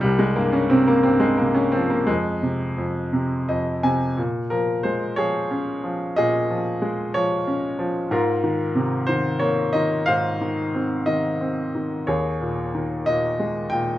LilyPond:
<<
  \new Staff \with { instrumentName = "Grand piano" } { \time 6/8 \key bes \dorian \tempo 4. = 60 << { r2. | r2 ees''8 aes''8 | r4. aes'4. | aes'4. r4. |
f'4. r4. | c''4. r4. | aes'4. r4. | } \\ { g16 aes16 bes16 des'16 c'16 bes16 c'16 aes16 bes16 des'16 c'16 bes16 | aes2~ aes8 r8 | r8 bes'8 c''8 des''4. | ees''4. des''4 r8 |
bes'4 r8 c''8 des''8 ees''8 | f''4. ees''4 r8 | des''4 r8 ees''4 g''8 | } >> }
  \new Staff \with { instrumentName = "Grand piano" } { \clef bass \time 6/8 \key bes \dorian c,8 g,8 c8 g,8 c8 f8 | f,8 c8 f,8 c8 f,8 c8 | bes,8 f8 aes8 f8 des'8 f8 | bes,8 f8 aes8 f8 des'8 f8 |
aes,8 ees8 c8 ees8 bes8 ees8 | aes,8 ees8 c'8 ees8 c'8 ees8 | ees,8 bes,8 ees8 bes,8 aes8 bes,8 | }
>>